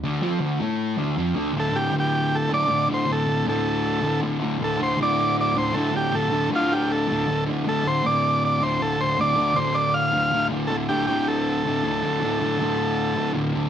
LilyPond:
<<
  \new Staff \with { instrumentName = "Transistor combo organ" } { \time 4/4 \key d \minor \tempo 4 = 158 r1 | a'8 g'8 g'4 a'8 d''4 c''8 | a'4 a'2 r4 | a'8 c''8 d''4 d''8 c''8 a'8 g'8 |
a'4 f'8 g'8 a'4. r8 | a'8 c''8 d''4 d''8 c''8 a'8 c''8 | d''4 c''8 d''8 f''4. r8 | a'8 g'8 g'8 a'2~ a'8~ |
a'2. r4 | }
  \new Staff \with { instrumentName = "Distorted electric guitar" } { \clef bass \time 4/4 \key d \minor <d, d>8 <f, f>8 <d, d>8 <a, a>4 <d, d>8 <f, f>8 <d, d>8 | <d, a, d>8 <a, d>8 <d, a, d>4. <a, d>8 <d, a, d>8 <a, d>8 | <d, a, d>8 <a, d>8 <d, a, d>4. <a, d>8 <d, a, d>8 <a, d>8 | <d, a, d>8 <a, d>8 <d, a, d>4. <a, d>8 <d, a, d>8 <a, d>8 |
<d, a, d>8 <a, d>8 <d, a, d>4. <a, d>8 <d, a, d>8 <a, d>8 | <d, a, d>8 <a, d>8 <d, a, d>4. <a, d>8 <d, a, d>8 <a, d>8 | <d, a, d>8 <a, d>8 <d, a, d>4. <a, d>8 <d, a, d>8 <a, d>8 | <d, a, d>8 <a, d>8 <d, a, d>4. <a, d>8 <d, a, d>8 <a, d>8 |
<d, a, d>8 <a, d>8 <d, a, d>4. <a, d>8 <d, a, d>8 <a, d>8 | }
>>